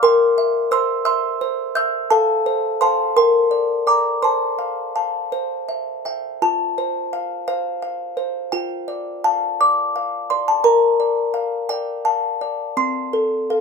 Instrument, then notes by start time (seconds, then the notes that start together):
music box
0.03 A#4 G5 C6
0.38 E5
0.71 C5 C6 E6
1.05 E5 C6 E6
1.41 C5
1.75 E5 E6 G6
2.10 A4 F5 A5
2.46 C5
2.81 C5 F5 A5 C6
3.16 A#4 G5 C6
3.51 D5
3.87 D5 G5 A#5 D6
4.22 C5 A5 C6
4.59 F5
4.96 F5 A5
5.32 C5
5.69 E5
6.05 E5 G5
6.42 F4 A5
6.78 C5
7.13 F5
7.48 C5 F5
7.82 F5
8.17 C5
8.52 F4 G5
8.88 D5
9.24 F5 A5
9.61 D5 D6
9.96 F5
10.30 D5 C6
10.48 A5
10.64 A#4 A#5
11.00 D5
11.34 F5
11.69 D5 G5
12.05 F5 A5
12.41 D5
12.77 C4 C6
13.13 A4
13.50 A4 F5